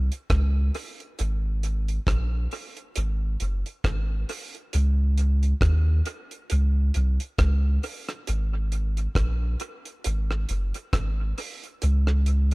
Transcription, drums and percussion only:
0, 0, Header, 1, 2, 480
1, 0, Start_track
1, 0, Tempo, 886263
1, 643, Time_signature, 4, 2, 24, 8
1, 6793, End_track
2, 0, Start_track
2, 0, Title_t, "Drums"
2, 63, Note_on_c, 9, 42, 51
2, 117, Note_off_c, 9, 42, 0
2, 162, Note_on_c, 9, 36, 89
2, 162, Note_on_c, 9, 42, 65
2, 164, Note_on_c, 9, 37, 106
2, 216, Note_off_c, 9, 36, 0
2, 216, Note_off_c, 9, 42, 0
2, 218, Note_off_c, 9, 37, 0
2, 403, Note_on_c, 9, 46, 58
2, 458, Note_off_c, 9, 46, 0
2, 543, Note_on_c, 9, 42, 49
2, 597, Note_off_c, 9, 42, 0
2, 643, Note_on_c, 9, 42, 83
2, 697, Note_off_c, 9, 42, 0
2, 884, Note_on_c, 9, 42, 67
2, 939, Note_off_c, 9, 42, 0
2, 1020, Note_on_c, 9, 42, 41
2, 1075, Note_off_c, 9, 42, 0
2, 1120, Note_on_c, 9, 36, 115
2, 1124, Note_on_c, 9, 42, 81
2, 1127, Note_on_c, 9, 37, 112
2, 1174, Note_off_c, 9, 36, 0
2, 1178, Note_off_c, 9, 42, 0
2, 1181, Note_off_c, 9, 37, 0
2, 1361, Note_on_c, 9, 46, 51
2, 1415, Note_off_c, 9, 46, 0
2, 1498, Note_on_c, 9, 42, 49
2, 1552, Note_off_c, 9, 42, 0
2, 1601, Note_on_c, 9, 42, 93
2, 1655, Note_off_c, 9, 42, 0
2, 1841, Note_on_c, 9, 42, 64
2, 1895, Note_off_c, 9, 42, 0
2, 1982, Note_on_c, 9, 42, 50
2, 2036, Note_off_c, 9, 42, 0
2, 2081, Note_on_c, 9, 36, 96
2, 2081, Note_on_c, 9, 42, 62
2, 2083, Note_on_c, 9, 37, 102
2, 2135, Note_off_c, 9, 36, 0
2, 2135, Note_off_c, 9, 42, 0
2, 2137, Note_off_c, 9, 37, 0
2, 2323, Note_on_c, 9, 46, 68
2, 2377, Note_off_c, 9, 46, 0
2, 2462, Note_on_c, 9, 42, 44
2, 2516, Note_off_c, 9, 42, 0
2, 2562, Note_on_c, 9, 42, 76
2, 2616, Note_off_c, 9, 42, 0
2, 2803, Note_on_c, 9, 42, 56
2, 2857, Note_off_c, 9, 42, 0
2, 2940, Note_on_c, 9, 42, 41
2, 2994, Note_off_c, 9, 42, 0
2, 3038, Note_on_c, 9, 36, 115
2, 3040, Note_on_c, 9, 42, 84
2, 3043, Note_on_c, 9, 37, 111
2, 3092, Note_off_c, 9, 36, 0
2, 3095, Note_off_c, 9, 42, 0
2, 3097, Note_off_c, 9, 37, 0
2, 3279, Note_on_c, 9, 42, 66
2, 3334, Note_off_c, 9, 42, 0
2, 3418, Note_on_c, 9, 42, 45
2, 3472, Note_off_c, 9, 42, 0
2, 3519, Note_on_c, 9, 42, 92
2, 3573, Note_off_c, 9, 42, 0
2, 3760, Note_on_c, 9, 42, 75
2, 3814, Note_off_c, 9, 42, 0
2, 3899, Note_on_c, 9, 42, 55
2, 3954, Note_off_c, 9, 42, 0
2, 4000, Note_on_c, 9, 36, 85
2, 4000, Note_on_c, 9, 42, 69
2, 4002, Note_on_c, 9, 37, 98
2, 4054, Note_off_c, 9, 36, 0
2, 4054, Note_off_c, 9, 42, 0
2, 4056, Note_off_c, 9, 37, 0
2, 4242, Note_on_c, 9, 46, 65
2, 4296, Note_off_c, 9, 46, 0
2, 4379, Note_on_c, 9, 37, 62
2, 4380, Note_on_c, 9, 42, 44
2, 4433, Note_off_c, 9, 37, 0
2, 4434, Note_off_c, 9, 42, 0
2, 4481, Note_on_c, 9, 42, 80
2, 4535, Note_off_c, 9, 42, 0
2, 4722, Note_on_c, 9, 42, 57
2, 4776, Note_off_c, 9, 42, 0
2, 4858, Note_on_c, 9, 42, 43
2, 4913, Note_off_c, 9, 42, 0
2, 4957, Note_on_c, 9, 36, 109
2, 4960, Note_on_c, 9, 42, 82
2, 4962, Note_on_c, 9, 37, 121
2, 5011, Note_off_c, 9, 36, 0
2, 5014, Note_off_c, 9, 42, 0
2, 5017, Note_off_c, 9, 37, 0
2, 5198, Note_on_c, 9, 42, 70
2, 5252, Note_off_c, 9, 42, 0
2, 5337, Note_on_c, 9, 42, 50
2, 5391, Note_off_c, 9, 42, 0
2, 5440, Note_on_c, 9, 42, 101
2, 5494, Note_off_c, 9, 42, 0
2, 5582, Note_on_c, 9, 37, 59
2, 5636, Note_off_c, 9, 37, 0
2, 5680, Note_on_c, 9, 42, 68
2, 5734, Note_off_c, 9, 42, 0
2, 5819, Note_on_c, 9, 42, 52
2, 5873, Note_off_c, 9, 42, 0
2, 5919, Note_on_c, 9, 36, 86
2, 5919, Note_on_c, 9, 42, 68
2, 5921, Note_on_c, 9, 37, 92
2, 5973, Note_off_c, 9, 42, 0
2, 5974, Note_off_c, 9, 36, 0
2, 5976, Note_off_c, 9, 37, 0
2, 6162, Note_on_c, 9, 46, 68
2, 6216, Note_off_c, 9, 46, 0
2, 6301, Note_on_c, 9, 42, 47
2, 6355, Note_off_c, 9, 42, 0
2, 6401, Note_on_c, 9, 42, 82
2, 6455, Note_off_c, 9, 42, 0
2, 6538, Note_on_c, 9, 37, 69
2, 6592, Note_off_c, 9, 37, 0
2, 6641, Note_on_c, 9, 42, 57
2, 6695, Note_off_c, 9, 42, 0
2, 6793, End_track
0, 0, End_of_file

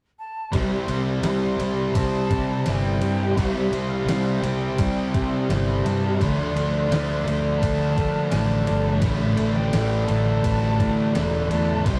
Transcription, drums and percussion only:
0, 0, Header, 1, 2, 480
1, 0, Start_track
1, 0, Tempo, 708383
1, 359, Time_signature, 4, 2, 24, 8
1, 8128, End_track
2, 0, Start_track
2, 0, Title_t, "Drums"
2, 360, Note_on_c, 9, 36, 103
2, 360, Note_on_c, 9, 51, 87
2, 428, Note_off_c, 9, 36, 0
2, 428, Note_off_c, 9, 51, 0
2, 598, Note_on_c, 9, 51, 58
2, 666, Note_off_c, 9, 51, 0
2, 836, Note_on_c, 9, 51, 96
2, 839, Note_on_c, 9, 38, 105
2, 904, Note_off_c, 9, 51, 0
2, 907, Note_off_c, 9, 38, 0
2, 1082, Note_on_c, 9, 51, 61
2, 1150, Note_off_c, 9, 51, 0
2, 1322, Note_on_c, 9, 36, 103
2, 1322, Note_on_c, 9, 51, 100
2, 1390, Note_off_c, 9, 36, 0
2, 1390, Note_off_c, 9, 51, 0
2, 1562, Note_on_c, 9, 36, 88
2, 1563, Note_on_c, 9, 51, 74
2, 1630, Note_off_c, 9, 36, 0
2, 1631, Note_off_c, 9, 51, 0
2, 1801, Note_on_c, 9, 51, 78
2, 1804, Note_on_c, 9, 38, 84
2, 1869, Note_off_c, 9, 51, 0
2, 1871, Note_off_c, 9, 38, 0
2, 2043, Note_on_c, 9, 51, 68
2, 2111, Note_off_c, 9, 51, 0
2, 2285, Note_on_c, 9, 36, 101
2, 2287, Note_on_c, 9, 51, 85
2, 2353, Note_off_c, 9, 36, 0
2, 2355, Note_off_c, 9, 51, 0
2, 2526, Note_on_c, 9, 51, 62
2, 2594, Note_off_c, 9, 51, 0
2, 2768, Note_on_c, 9, 51, 84
2, 2771, Note_on_c, 9, 38, 114
2, 2836, Note_off_c, 9, 51, 0
2, 2838, Note_off_c, 9, 38, 0
2, 3005, Note_on_c, 9, 51, 63
2, 3073, Note_off_c, 9, 51, 0
2, 3242, Note_on_c, 9, 51, 85
2, 3245, Note_on_c, 9, 36, 100
2, 3309, Note_off_c, 9, 51, 0
2, 3313, Note_off_c, 9, 36, 0
2, 3486, Note_on_c, 9, 36, 85
2, 3486, Note_on_c, 9, 51, 65
2, 3553, Note_off_c, 9, 51, 0
2, 3554, Note_off_c, 9, 36, 0
2, 3728, Note_on_c, 9, 51, 67
2, 3731, Note_on_c, 9, 38, 88
2, 3796, Note_off_c, 9, 51, 0
2, 3798, Note_off_c, 9, 38, 0
2, 3970, Note_on_c, 9, 51, 60
2, 4037, Note_off_c, 9, 51, 0
2, 4206, Note_on_c, 9, 36, 97
2, 4209, Note_on_c, 9, 51, 75
2, 4274, Note_off_c, 9, 36, 0
2, 4277, Note_off_c, 9, 51, 0
2, 4449, Note_on_c, 9, 51, 59
2, 4517, Note_off_c, 9, 51, 0
2, 4688, Note_on_c, 9, 51, 83
2, 4691, Note_on_c, 9, 38, 114
2, 4756, Note_off_c, 9, 51, 0
2, 4758, Note_off_c, 9, 38, 0
2, 4931, Note_on_c, 9, 51, 65
2, 4998, Note_off_c, 9, 51, 0
2, 5163, Note_on_c, 9, 36, 107
2, 5168, Note_on_c, 9, 51, 88
2, 5230, Note_off_c, 9, 36, 0
2, 5236, Note_off_c, 9, 51, 0
2, 5400, Note_on_c, 9, 36, 87
2, 5405, Note_on_c, 9, 51, 67
2, 5468, Note_off_c, 9, 36, 0
2, 5473, Note_off_c, 9, 51, 0
2, 5635, Note_on_c, 9, 51, 84
2, 5637, Note_on_c, 9, 38, 87
2, 5703, Note_off_c, 9, 51, 0
2, 5705, Note_off_c, 9, 38, 0
2, 5876, Note_on_c, 9, 51, 65
2, 5944, Note_off_c, 9, 51, 0
2, 6110, Note_on_c, 9, 51, 86
2, 6113, Note_on_c, 9, 36, 110
2, 6177, Note_off_c, 9, 51, 0
2, 6181, Note_off_c, 9, 36, 0
2, 6352, Note_on_c, 9, 51, 61
2, 6419, Note_off_c, 9, 51, 0
2, 6478, Note_on_c, 9, 38, 31
2, 6546, Note_off_c, 9, 38, 0
2, 6593, Note_on_c, 9, 51, 91
2, 6596, Note_on_c, 9, 38, 109
2, 6661, Note_off_c, 9, 51, 0
2, 6664, Note_off_c, 9, 38, 0
2, 6833, Note_on_c, 9, 51, 64
2, 6836, Note_on_c, 9, 38, 30
2, 6901, Note_off_c, 9, 51, 0
2, 6904, Note_off_c, 9, 38, 0
2, 7075, Note_on_c, 9, 51, 82
2, 7076, Note_on_c, 9, 36, 106
2, 7143, Note_off_c, 9, 51, 0
2, 7144, Note_off_c, 9, 36, 0
2, 7316, Note_on_c, 9, 36, 90
2, 7319, Note_on_c, 9, 51, 69
2, 7384, Note_off_c, 9, 36, 0
2, 7386, Note_off_c, 9, 51, 0
2, 7556, Note_on_c, 9, 51, 71
2, 7559, Note_on_c, 9, 38, 97
2, 7624, Note_off_c, 9, 51, 0
2, 7627, Note_off_c, 9, 38, 0
2, 7798, Note_on_c, 9, 51, 62
2, 7866, Note_off_c, 9, 51, 0
2, 8036, Note_on_c, 9, 36, 101
2, 8036, Note_on_c, 9, 51, 79
2, 8104, Note_off_c, 9, 36, 0
2, 8104, Note_off_c, 9, 51, 0
2, 8128, End_track
0, 0, End_of_file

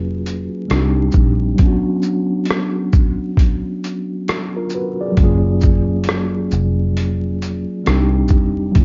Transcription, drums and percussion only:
0, 0, Header, 1, 2, 480
1, 0, Start_track
1, 0, Tempo, 895522
1, 854, Time_signature, 4, 2, 24, 8
1, 4742, End_track
2, 0, Start_track
2, 0, Title_t, "Drums"
2, 141, Note_on_c, 9, 42, 42
2, 141, Note_on_c, 9, 82, 47
2, 194, Note_off_c, 9, 42, 0
2, 194, Note_off_c, 9, 82, 0
2, 375, Note_on_c, 9, 42, 54
2, 380, Note_on_c, 9, 37, 96
2, 428, Note_off_c, 9, 42, 0
2, 434, Note_off_c, 9, 37, 0
2, 599, Note_on_c, 9, 82, 43
2, 612, Note_on_c, 9, 36, 78
2, 653, Note_off_c, 9, 82, 0
2, 666, Note_off_c, 9, 36, 0
2, 848, Note_on_c, 9, 42, 65
2, 853, Note_on_c, 9, 36, 94
2, 902, Note_off_c, 9, 42, 0
2, 907, Note_off_c, 9, 36, 0
2, 1084, Note_on_c, 9, 82, 45
2, 1138, Note_off_c, 9, 82, 0
2, 1315, Note_on_c, 9, 42, 61
2, 1342, Note_on_c, 9, 37, 114
2, 1369, Note_off_c, 9, 42, 0
2, 1396, Note_off_c, 9, 37, 0
2, 1570, Note_on_c, 9, 82, 52
2, 1572, Note_on_c, 9, 36, 110
2, 1623, Note_off_c, 9, 82, 0
2, 1625, Note_off_c, 9, 36, 0
2, 1808, Note_on_c, 9, 36, 96
2, 1818, Note_on_c, 9, 42, 82
2, 1862, Note_off_c, 9, 36, 0
2, 1871, Note_off_c, 9, 42, 0
2, 2059, Note_on_c, 9, 42, 49
2, 2059, Note_on_c, 9, 82, 44
2, 2112, Note_off_c, 9, 42, 0
2, 2112, Note_off_c, 9, 82, 0
2, 2295, Note_on_c, 9, 42, 58
2, 2300, Note_on_c, 9, 37, 93
2, 2348, Note_off_c, 9, 42, 0
2, 2354, Note_off_c, 9, 37, 0
2, 2518, Note_on_c, 9, 82, 49
2, 2571, Note_off_c, 9, 82, 0
2, 2771, Note_on_c, 9, 42, 62
2, 2773, Note_on_c, 9, 36, 98
2, 2825, Note_off_c, 9, 42, 0
2, 2827, Note_off_c, 9, 36, 0
2, 3007, Note_on_c, 9, 82, 50
2, 3020, Note_on_c, 9, 36, 83
2, 3061, Note_off_c, 9, 82, 0
2, 3074, Note_off_c, 9, 36, 0
2, 3235, Note_on_c, 9, 42, 61
2, 3263, Note_on_c, 9, 37, 106
2, 3289, Note_off_c, 9, 42, 0
2, 3316, Note_off_c, 9, 37, 0
2, 3491, Note_on_c, 9, 82, 54
2, 3544, Note_off_c, 9, 82, 0
2, 3735, Note_on_c, 9, 42, 84
2, 3789, Note_off_c, 9, 42, 0
2, 3978, Note_on_c, 9, 42, 47
2, 3978, Note_on_c, 9, 82, 47
2, 4032, Note_off_c, 9, 42, 0
2, 4032, Note_off_c, 9, 82, 0
2, 4214, Note_on_c, 9, 42, 60
2, 4220, Note_on_c, 9, 37, 96
2, 4267, Note_off_c, 9, 42, 0
2, 4273, Note_off_c, 9, 37, 0
2, 4439, Note_on_c, 9, 82, 43
2, 4452, Note_on_c, 9, 36, 71
2, 4492, Note_off_c, 9, 82, 0
2, 4505, Note_off_c, 9, 36, 0
2, 4690, Note_on_c, 9, 42, 67
2, 4693, Note_on_c, 9, 36, 96
2, 4742, Note_off_c, 9, 36, 0
2, 4742, Note_off_c, 9, 42, 0
2, 4742, End_track
0, 0, End_of_file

